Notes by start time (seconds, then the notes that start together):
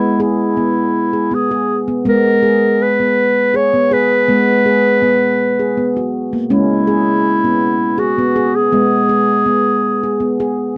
Already playing: G#3 B3 E4
0.20 E4 G#4
0.57 B3
1.13 G#4
1.31 B3 G#4
1.51 G#4
1.88 B3
2.05 G#3 B3 A#4
2.43 G#4
2.82 B4
3.00 B3
3.54 G#4 C#5
3.74 B3
3.91 G#4 B4
4.28 G#3 B3
4.66 G#4
5.02 B3
5.59 G#4
5.77 B3
5.97 F#4
6.33 A#3
6.50 G#3 C#4 E4
6.87 G#4
7.45 B3
7.98 F#4 G#4
8.18 B3
8.36 G#4
8.55 G#4
8.72 G#3 B3
9.09 G#4
9.46 B3
10.03 G#4
10.20 B3
10.40 G#4